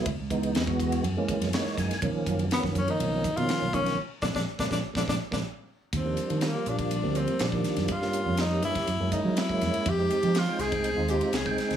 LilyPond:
<<
  \new Staff \with { instrumentName = "Tenor saxophone" } { \time 4/4 \key ais \phrygian \tempo 4 = 122 r1 | r4 b8 cis'16 dis'4 eis'8. cis'8 | r8 d'16 d'16 r16 d'16 d'16 r16 d'16 d'16 r16 d'16 r4 | \key ees \major c'4 bes8 d'4 c'8 d'4 |
f'4 ees'8 fes'4 ees'8 fes'4 | g'4 f'8 aes'4 g'8 aes'4 | }
  \new Staff \with { instrumentName = "Tonewheel organ" } { \time 4/4 \key ais \phrygian << { r2. cis''8 gis''8 | r1 | r8 <eis gis ais>16 <eis gis ais>16 r16 <eis gis ais>16 <eis gis ais>16 r16 <eis gis ais>16 <eis gis ais>16 r16 <eis gis ais>16 r4 | \key ees \major r1 |
r1 | r1 | } \\ { r8 <e gis b dis'>8. <e gis b fis'>8. r16 <e gis ais cis'>8. <e gis ais dis'>8. r16 | <dis eis ais cis'>8. r16 <dis eis ais cis'>8. <dis eis ais cis'>8. r16 <dis eis ais cis'>8. <dis eis ais cis'>8 | r1 | r16 <f g bes d'>8. r16 <f g bes f'>8. r16 <f g bes c'>8. r16 <ees f g bes>8. |
r16 <g bes des' f'>8. r16 <g bes des' g'>8. r16 <aes bes des' fes'>8. r16 <aes bes des' fes'>8. | r16 <aes c' ees' g'>8. r16 <aes c' ees' g''>8. r16 <aes c' ees' f'>8. r16 <aes c' ees' g''>8. | } >> }
  \new Staff \with { instrumentName = "Fingered electric bass" } { \clef bass \time 4/4 \key ais \phrygian cis,16 cis,8. e,4 fis,16 r8 fis,16 r8 fis,16 r16 | b,,16 r16 fis,8 r16 fis,16 fis,16 r16 b,,8 r16 b,16 r16 b,,8. | r8 ais,,16 ais,,16 r16 ais,,16 ais,,16 r16 ais,,16 ais,,16 r16 ais,,16 r4 | \key ees \major ees,8 r16 ees8 r16 bes,,8. d,8 r16 bes,,8 r16 ges,16 |
g,8. f,8. g,16 r16 ges,16 ges,16 r16 ges8. ges,16 r16 | f,8 r16 f8 r16 c,8. ees,8 r16 c,8 r16 d,16 | }
  \new DrumStaff \with { instrumentName = "Drums" } \drummode { \time 4/4 <bd cymr>8 <hhp bd cymr>16 cymr16 <cymr sn>16 bd16 <hhp bd cymr>16 cymr16 cymr8 <hhp bd cymr>16 <cymr sn>16 <cymr sn>16 sn16 <hhp bd cymr sn>16 <cymr sn>16 | <bd cymr>8 <hhp bd cymr>16 cymr16 <cymr sn>16 <bd sn>16 <hhp bd cymr>16 cymr16 cymr8 <hhp bd cymr>16 cymr16 <cymr sn>8 <hhp bd cymr>16 <cymr sn>16 | r8 <bd sn>16 <bd sn>16 r16 <bd sn>16 <bd sn>8 <bd sn>16 <bd sn>8 <bd sn>16 r4 | <hhp bd cymr>8 <hhp cymr>16 cymr16 <hhp cymr sn>8 <hhp cymr>16 <bd cymr>16 <hhp cymr>8 <hhp cymr>16 cymr16 <hhp cymr sn>16 bd16 <hhp cymr sn>16 <cymr sn>16 |
<hhp bd cymr>16 sn16 <hhp cymr>8 <hhp cymr sn>8 <hhp cymr>16 <bd cymr sn>16 <hhp cymr>8 <hhp bd cymr>8 <hhp cymr sn>16 bd16 <hhp cymr sn>16 cymr16 | <hhp bd cymr>8 <hhp cymr>16 cymr16 <hhp cymr sn>8 <hhp cymr sn>16 <bd cymr>16 <hhp cymr>8 <hhp cymr>16 cymr16 <hhp cymr sn>16 bd16 <hhp cymr sn>16 <cymr sn>16 | }
>>